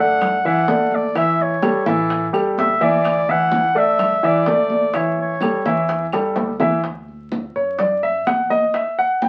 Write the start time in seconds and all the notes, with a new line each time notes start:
Already playing: F#2
0.00 A3 A4 D5 F#5
0.21 high bongo, high conga, low conga, claves
0.45 E3 E4 E5 F#5, high conga
0.68 A1 A3 A4 D5, high bongo, low bongo, high conga
0.91 D5, high conga
1.15 E3 E4 E5, high bongo, high conga, claves
1.39 C#5, high conga
1.62 G3 G4 A4, high bongo, high conga, claves
1.86 A2 E3 E4 A4 E5, high conga
2.10 high bongo, high conga
2.33 E2 G3 G4 A4, high bongo, high conga, claves
2.57 D2 E5, high bongo, low bongo, high conga
2.81 E3 E4 D5 E5, high bongo, high conga
3.05 high bongo, high conga, claves
3.28 E3 E4 E5 F#5, high conga
3.52 high bongo, high conga
3.75 A1 A3 A4 D5 E5, high conga
3.99 high bongo, high conga, low conga, claves
4.22 E3 E4 D5 E5, high conga
4.46 A1 A3 A4 D5, high bongo, low bongo, high conga
4.70 high conga
4.94 E3 E4 C#5 E5, high bongo, high conga, claves
5.18 C#5, high conga
5.41 G3 G4 A4, high bongo, high conga, claves
5.65 E2 E3 E4 E5, high bongo, high conga
5.89 high bongo, high conga
6.12 E2 G3 G4 A4, high bongo, high conga, claves
6.36 D2, high bongo, high conga
6.60 E3 E4 E5, low bongo, high conga
6.84 D2, high bongo, high conga
7.08 high conga
7.32 high bongo, high conga
7.56 F#2 C#5, high conga
7.79 D5, high bongo, high conga, low conga
8.03 E5, high conga
8.27 A1 F#5, high bongo, low bongo, high conga
8.50 D#5, high conga
8.74 E5, high bongo, high conga
8.99 F#5, high conga
9.22 G5, high bongo, high conga